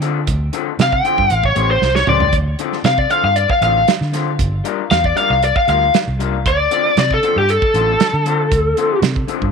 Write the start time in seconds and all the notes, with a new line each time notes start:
Already playing: D3
0.01 D3 C4 F4 A4, closed hi-hat
0.27 D2, kick, closed hi-hat
0.53 D3 C4 F4 A4, closed hi-hat
0.79 C3 F5, snare, closed hi-hat
0.92 G5, kick
1.04 D3 C4 F4 A4, closed hi-hat
1.18 G2, kick
1.30 A1, closed hi-hat
1.44 C#5, kick
1.55 A1 A3 C#4 G4 C5, closed hi-hat
1.71 C5
1.81 C2, snare
1.96 C#5, snare
2.07 C#2 A3 C#4 G4 C5 D5, mid tom
2.20 floor tom
2.33 D2, kick, closed hi-hat
2.59 D3 C4 F4 A4, closed hi-hat
2.73 snare
2.84 C3 F5, snare, closed hi-hat
2.98 D5, kick
3.10 D3 C4 F4 A4 F5, closed hi-hat
3.23 G2 F5
3.36 D5, closed hi-hat
3.50 F5, kick
3.61 A1 D3 C4 F4 A4 F5, closed hi-hat
3.88 snare, closed hi-hat
4.01 D3, snare
4.13 D3 C4 F4 A4, snare, closed hi-hat
4.39 G1, kick, closed hi-hat
4.64 G3 D4 F4 A#4, closed hi-hat
4.91 E2 F5, snare, closed hi-hat
5.04 D5, kick
5.16 G3 D4 F4 A#4 F5, closed hi-hat
5.30 C2 F5
5.43 D5, closed hi-hat
5.56 F5, kick
5.67 D2 G3 D4 F4 A#4 F5, closed hi-hat
5.94 snare, closed hi-hat
6.07 C2
6.19 G3 D4 F4 A#4, closed hi-hat
6.46 D2 D5, kick, closed hi-hat
6.71 D3 C4 F4 A4, closed hi-hat
6.97 C3 D5, snare, closed hi-hat
7.11 A4, kick
7.23 D3 C4 F4 A4, closed hi-hat
7.36 G2 G4
7.49 A4, closed hi-hat
7.62 kick
7.74 A1 D3 C4 F4 A4, closed hi-hat
8.00 snare, closed hi-hat
8.13 D3
8.26 D3 C4 F4 A4, closed hi-hat
8.52 D2, kick, closed hi-hat
8.77 D3 C4 F4 A4, closed hi-hat
9.02 C3, snare, closed hi-hat
9.16 kick
9.28 D3 C4 F4 A4, closed hi-hat
9.42 G2, kick